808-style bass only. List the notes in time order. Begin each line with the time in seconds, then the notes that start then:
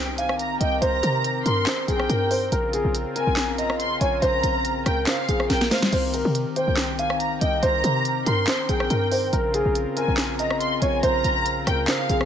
Already playing: C2
0.61 C2
0.82 C2
1.03 C3
1.46 G2
1.88 A#1
2.09 G2
2.52 A#1
2.85 A#1
3.27 A#1
4.01 A#1
4.22 A#1
4.44 A#1
4.86 C#2
5.29 A#1
5.50 A#1
5.92 C2
6.25 C3
6.68 C2
7.41 C2
7.63 C2
7.84 C3
8.27 G2
8.69 A#1
8.90 G2
9.33 A#1
9.66 A#1
10.08 A#1
10.82 A#1
11.03 A#1
11.24 A#1
11.67 C#2
12.10 A#1